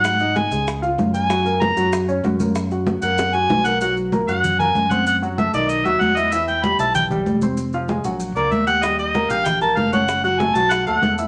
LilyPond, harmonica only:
\new Staff \with { instrumentName = "Harmonica" } { \time 4/4 \key fis \major \tempo 4 = 191 fis''4 gis''4 r4. gis''8~ | gis''4 ais''4 r2 | r4. fis''4 gis''4 fis''8 | \key fis \mixolydian fis''8 r4 fis''4 gis''4 fis''8 |
fis''8 r8 e''8 d''8 dis''8 e''8 fis''8 dis''8 | e''8 g''8 b''8 a''8 g''8 r4. | r2 r8 d''8 e''8 fis''8 | dis''8 dis''4 eis''8 g''8 a''8 eis''8 fis''8~ |
fis''8 fis''8 gis''8 a''8 fis''8 fis''4 r8 | }